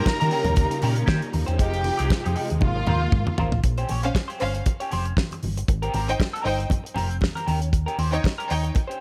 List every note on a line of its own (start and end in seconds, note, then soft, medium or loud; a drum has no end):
0.00 1.57 C#3 medium
0.00 1.57 G3 medium
0.00 1.56 A#3 medium
0.00 3.60 D#4 medium
0.00 2.57 F4 medium
0.00 1.30 A#4 loud
0.00 1.30 A#5 loud
0.06 kick loud
0.06 snare loud
0.06 high conga medium
0.20 0.30 D#3 loud
0.20 0.30 C#4 medium
0.20 0.31 G4 medium
0.20 0.32 A#4 medium
0.20 closed hi-hat medium
0.31 0.52 C#4 medium
0.31 0.46 G4 loud
0.31 0.44 A#4 loud
0.31 open hi-hat medium
0.45 0.65 D#2 medium
0.45 muted clean electric guitar stroke soft
0.45 closed hi-hat soft
0.45 low conga medium
0.56 kick loud
0.56 closed hi-hat medium
0.56 muted conga medium
0.71 muted clean electric guitar stroke soft
0.71 closed hi-hat medium
0.82 1.02 A#2 medium
0.82 1.03 C#4 medium
0.82 0.97 G4 medium
0.82 0.95 A#4 medium
0.82 open hi-hat medium
0.82 muted conga medium
0.96 muted clean electric guitar stroke soft
0.96 closed hi-hat medium
1.06 1.19 D#3 loud
1.06 1.28 C#4 medium
1.06 1.22 G4 medium
1.06 1.21 C5 medium
1.06 kick loud
1.06 snare loud
1.06 high conga medium
1.22 muted clean electric guitar stroke soft
1.22 closed hi-hat soft
1.32 1.45 D#2 loud
1.32 muted clean electric guitar stroke soft
1.32 open hi-hat medium
1.32 high conga medium
1.46 1.57 E2 medium
1.46 1.59 C#4 soft
1.46 1.59 G4 medium
1.46 1.62 C5 medium
1.46 closed hi-hat medium
1.58 1.89 F1 loud
1.58 3.62 C3 medium
1.58 2.61 F3 medium
1.58 1.83 G#3 medium
1.58 3.62 G#3 medium
1.58 1.84 D#4 medium
1.58 2.35 G4 loud
1.58 1.84 G4 medium
1.58 2.35 G5 medium
1.58 kick loud
1.58 closed hi-hat medium
1.74 closed hi-hat soft
1.84 muted clean electric guitar stroke soft
1.84 open hi-hat medium
1.84 muted conga medium
1.97 2.08 C2 medium
1.97 2.09 G#3 medium
1.97 2.10 D#4 medium
1.97 2.10 G4 medium
1.97 closed hi-hat medium
2.10 muted clean electric guitar stroke soft
2.10 kick loud
2.10 snare loud
2.10 high conga medium
2.24 2.34 F2 medium
2.24 2.34 G#3 medium
2.24 2.35 D#4 soft
2.24 2.36 G4 medium
2.24 closed hi-hat soft
2.35 2.56 G#3 medium
2.35 2.50 D#4 medium
2.35 2.49 G4 medium
2.35 open hi-hat medium
2.50 2.59 D#2 medium
2.50 muted clean electric guitar stroke medium
2.50 closed hi-hat medium
2.61 2.81 G#1 loud
2.61 3.63 A#3 medium
2.61 3.37 F4 medium
2.61 3.63 F4 medium
2.61 3.37 F5 medium
2.61 kick medium
2.61 high tom medium
2.61 muted conga medium
2.61 low conga medium
2.76 muted clean electric guitar stroke soft
2.87 3.06 D#2 medium
2.87 3.08 F4 medium
2.87 3.02 A#4 medium
2.87 3.01 C5 medium
2.87 mid tom medium
2.87 muted conga medium
2.87 low conga medium
3.02 muted clean electric guitar stroke medium
3.12 3.23 G#2 loud
3.12 kick loud
3.12 mid tom medium
3.12 high conga medium
3.27 muted clean electric guitar stroke medium
3.27 mid tom medium
3.27 high conga medium
3.38 3.50 G#1 medium
3.38 3.59 F4 medium
3.38 3.52 A#4 medium
3.38 3.51 C5 medium
3.38 floor tom loud
3.38 high conga medium
3.52 3.62 A1 medium
3.52 muted clean electric guitar stroke medium
3.52 floor tom loud
3.63 3.83 A#1 loud
3.63 muted clean electric guitar stroke soft
3.63 kick loud
3.63 closed hi-hat medium
3.78 3.88 C#4 medium
3.78 3.89 G4 medium
3.78 3.91 C5 medium
3.78 closed hi-hat soft
3.89 4.09 A#1 medium
3.89 4.06 C#4 medium
3.89 4.03 G4 medium
3.89 4.03 C#5 medium
3.89 open hi-hat medium
3.89 muted conga medium
4.03 4.13 C#4 medium
4.03 4.13 C5 medium
4.03 4.13 F5 medium
4.03 muted clean electric guitar stroke soft
4.03 closed hi-hat medium
4.14 muted clean electric guitar stroke soft
4.14 kick loud
4.14 snare loud
4.14 high conga medium
4.28 4.39 C#4 medium
4.28 4.40 G4 medium
4.28 4.40 C5 medium
4.28 closed hi-hat soft
4.40 4.60 G1 medium
4.40 4.62 C#4 medium
4.40 4.62 C5 medium
4.40 4.62 F5 loud
4.40 muted clean electric guitar stroke soft
4.40 open hi-hat medium
4.54 muted clean electric guitar stroke soft
4.54 closed hi-hat soft
4.66 muted clean electric guitar stroke soft
4.66 kick loud
4.66 closed hi-hat medium
4.66 muted conga medium
4.80 4.90 C#4 medium
4.80 4.91 G4 medium
4.80 4.93 C#5 medium
4.80 closed hi-hat medium
4.91 5.11 F1 medium
4.91 5.12 C#4 medium
4.91 5.06 G4 medium
4.91 5.05 C5 medium
4.91 open hi-hat medium
4.91 muted conga soft
5.05 muted clean electric guitar stroke soft
5.05 closed hi-hat soft
5.17 muted clean electric guitar stroke soft
5.17 kick loud
5.17 snare loud
5.17 high conga medium
5.31 muted clean electric guitar stroke soft
5.31 closed hi-hat soft
5.31 high conga medium
5.43 5.62 G1 medium
5.43 open hi-hat medium
5.43 high conga medium
5.57 muted clean electric guitar stroke soft
5.57 closed hi-hat medium
5.68 5.88 G#1 loud
5.68 muted clean electric guitar stroke soft
5.68 kick loud
5.68 closed hi-hat medium
5.68 muted conga soft
5.82 5.93 C4 medium
5.82 5.93 G4 medium
5.82 5.94 A#4 medium
5.82 closed hi-hat soft
5.94 6.13 G#1 medium
5.94 6.11 C4 medium
5.94 6.09 G4 medium
5.94 6.07 A#4 medium
5.94 open hi-hat medium
5.94 muted conga medium
6.08 6.18 D#4 medium
6.08 6.18 C5 medium
6.08 6.18 G5 loud
6.08 muted clean electric guitar stroke soft
6.08 closed hi-hat soft
6.19 muted clean electric guitar stroke soft
6.19 kick loud
6.19 snare loud
6.19 high conga medium
6.33 6.43 C4 medium
6.33 6.44 G4 medium
6.33 6.44 A#4 medium
6.33 closed hi-hat soft
6.44 6.64 G1 medium
6.44 6.66 D#4 loud
6.44 6.66 C5 medium
6.44 6.67 G5 loud
6.44 muted clean electric guitar stroke soft
6.44 open hi-hat medium
6.58 muted clean electric guitar stroke soft
6.58 closed hi-hat soft
6.70 kick loud
6.70 closed hi-hat medium
6.70 muted conga medium
6.70 low conga medium
6.84 muted clean electric guitar stroke soft
6.84 closed hi-hat medium
6.94 7.26 F1 medium
6.94 7.16 C4 medium
6.94 7.09 G4 medium
6.94 7.08 A#4 medium
6.94 open hi-hat medium
6.94 muted conga soft
6.94 low conga medium
7.09 muted clean electric guitar stroke soft
7.09 closed hi-hat soft
7.21 muted clean electric guitar stroke soft
7.21 kick loud
7.21 snare loud
7.21 high conga medium
7.35 7.46 C4 medium
7.35 7.46 G4 medium
7.35 7.47 A#4 medium
7.35 closed hi-hat medium
7.35 high conga medium
7.46 7.85 D#2 medium
7.46 7.68 C#4 medium
7.46 7.61 G4 medium
7.46 7.59 A#4 medium
7.46 open hi-hat medium
7.46 high conga medium
7.61 muted clean electric guitar stroke soft
7.61 closed hi-hat medium
7.72 muted clean electric guitar stroke soft
7.72 kick loud
7.72 closed hi-hat medium
7.72 muted conga soft
7.86 7.97 C#4 medium
7.86 7.97 G4 medium
7.86 7.99 A#4 medium
7.86 closed hi-hat soft
7.98 8.17 D#2 medium
7.98 8.15 C#4 medium
7.98 8.11 G4 medium
7.98 8.11 C5 medium
7.98 open hi-hat medium
7.98 muted conga medium
8.11 8.22 D#4 medium
8.11 8.22 C#5 loud
8.11 8.22 G5 medium
8.11 muted clean electric guitar stroke soft
8.11 closed hi-hat soft
8.23 muted clean electric guitar stroke soft
8.23 kick loud
8.23 snare loud
8.23 high conga medium
8.38 8.49 C#4 medium
8.38 8.49 G4 medium
8.38 8.50 A#4 medium
8.38 closed hi-hat soft
8.49 8.69 D#2 medium
8.49 8.71 D#4 medium
8.49 8.71 C#5 medium
8.49 8.71 G5 loud
8.49 muted clean electric guitar stroke soft
8.49 open hi-hat medium
8.63 muted clean electric guitar stroke medium
8.63 closed hi-hat soft
8.74 muted clean electric guitar stroke soft
8.74 kick loud
8.74 closed hi-hat medium
8.74 muted conga medium
8.88 8.99 C#4 soft
8.88 9.00 G4 medium
8.88 9.01 C5 medium
8.88 closed hi-hat soft